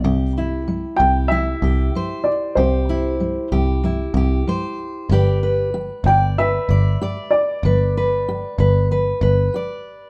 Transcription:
<<
  \new Staff \with { instrumentName = "Upright piano" } { \time 4/4 \key c \major \tempo 4 = 95 r4. g''8 e''4. d''8 | c''4. r2 r8 | r4. g''8 e''4. d''8~ | d''2. r4 | }
  \new Staff \with { instrumentName = "Steel-string acoustic guitar" } { \time 4/4 \key c \major << { g'8 e'4 g'8 e'8 g'8 c''4 | g'8 e'4 g'8 e'8 g'8 c''4 | <g' b' d''>8 b'4 d''8 b'8 d''8 d''4 | b'8 b'4 b'8 b'8 b'8 d''4 | } \\ { c4 g4 g4 g4 | c4 g4 g4 g4 | g4 g'4 d4 g'4 | g4 g'4 d4 g'4 | } >> }
  \new Staff \with { instrumentName = "Picked electric bass" } { \clef bass \time 4/4 \key c \major c,4. c,4 c,8 r4 | c,4. c,4 c,8 r4 | g,,4. g,,4 g,,8 r4 | g,,4. g,,4 g,,8 r4 | }
>>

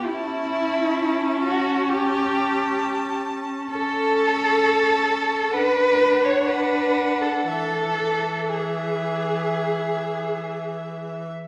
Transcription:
<<
  \new Staff \with { instrumentName = "Violin" } { \time 4/4 \key a \mixolydian \tempo 4 = 64 a''2 a''2 | \key e \mixolydian a''2 fis''4 fis''4 | e''4 e''2. | }
  \new Staff \with { instrumentName = "Cello" } { \time 4/4 \key a \mixolydian e'4. fis'8 g'4. r8 | \key e \mixolydian a'2 b'8. cis''16 b'8. a'16 | a'4 gis'2~ gis'8 r8 | }
  \new Staff \with { instrumentName = "Violin" } { \time 4/4 \key a \mixolydian e'4. fis'8 g'4. r8 | \key e \mixolydian a'2 b'8. cis''16 b'8. a'16 | a'4 gis'2~ gis'8 r8 | }
  \new Staff \with { instrumentName = "Viola" } { \time 4/4 \key a \mixolydian cis'1 | \key e \mixolydian cis'2 d'2 | e1 | }
>>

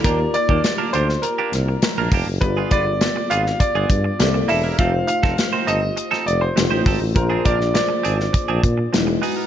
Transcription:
<<
  \new Staff \with { instrumentName = "Grand piano" } { \time 4/4 \key ees \major \tempo 4 = 101 bes'8 d''4 c''8 bes'4. r8 | b'8 d''4 f''8 d''4. e''8 | f''8 f''4 ees''4 d''16 c''8. r8 | bes'8 d''8 d''2 r4 | }
  \new Staff \with { instrumentName = "Tine electric piano" } { \time 4/4 \key ees \major <bes ees' f' g' d''>1 | <b f' g' aes' d''>2. <bes e' g' a' d''>4 | <a ees' f' g' c''>2. <a ees' f' g' ces'' c''>4 | <bes d' f' aes' c''>2. <ges gis dis' e' ges' b'>4 | }
  \new Staff \with { instrumentName = "Clean electric guitar" } { \time 4/4 \key ees \major <bes d' g'>16 r8 <bes d' g'>16 r16 <bes d' bes'>16 <bes d' g'>16 r8 <bes d' g'>16 r8. <bes d' bes'>16 <bes d' g'>16 r16 | r16 <b f' aes'>16 <b f' b'>16 r8. <b f' aes'>16 r8 <b f' aes'>16 r4 <bes e' a'>16 <bes e' bes'>16 | <c' ees' a'>16 r8 <c' ees' a'>16 r16 <c' ees' c''>16 <c' ees' a'>16 r8 <c' ees' a'>16 r8. <ees' g' c''>16 <ees' g' a'>16 r16 | r16 <c' d' aes'>16 <c' d' bes'>16 r8. <c' d' aes'>16 r8 <c' d' aes'>16 r4 <b dis' gis'>16 <b dis' bes'>16 | }
  \new Staff \with { instrumentName = "Tuba" } { \clef bass \time 4/4 \key ees \major ees,8 r16 ees,16 r8 d,8 r8 c,8 r16 bes,,16 f,,16 ges,,16 | g,,8 g,,8. r16 aes,,8 r16 g,,16 g,8 c,8 e,,8 | f,,8 r16 f,,16 r8 g,,8 r8 f,,8 f,,16 a,,16 aes,,16 a,,16 | bes,,8 bes,,8. r16 aes,,8 r16 bes,,16 bes,8 e,,8 r8 | }
  \new DrumStaff \with { instrumentName = "Drums" } \drummode { \time 4/4 <hh bd>8 hh16 bd16 <hh sn>8 hh16 sn16 hh8 <hh sn>8 <hh sn>8 <hho bd>8 | <hh bd>8 <hh bd>8 <hh sn>8 hh16 sn16 <hh bd>8 <hh bd>8 <hh sn>8 hho8 | <hh bd>8 hh16 <bd sn>16 <hh sn>8 hh8 hh16 sn16 hh8 <hh sn>8 <hho bd>8 | <hh bd>8 <hh bd>16 sn16 <hh sn>8 hh16 sn16 <hh bd>8 <hh bd>8 <hh sn>8 hho8 | }
>>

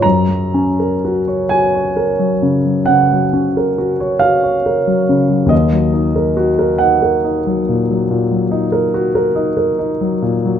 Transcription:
\new Staff \with { instrumentName = "Grand piano" } { \time 12/8 \key fis \major \tempo 4. = 46 << { ais''4. gis''4. fis''4. eis''4. | dis''4. fis''1 r8 | } \\ { fis,16 fis16 cis'16 ais'16 fis'16 cis''16 fis'16 cis''16 ais'16 fis16 cis16 fis16 cis16 fis16 cis'16 ais'16 fis'16 cis''16 fis'16 cis''16 ais'16 fis16 cis16 fis16 | dis,16 fis16 dis'16 ais'16 fis'16 ais'16 dis'16 ais'16 dis'16 fis16 ais,16 fis16 ais,16 fis16 dis'16 ais'16 fis'16 ais'16 dis'16 ais'16 dis'16 fis16 ais,16 fis16 | } >> }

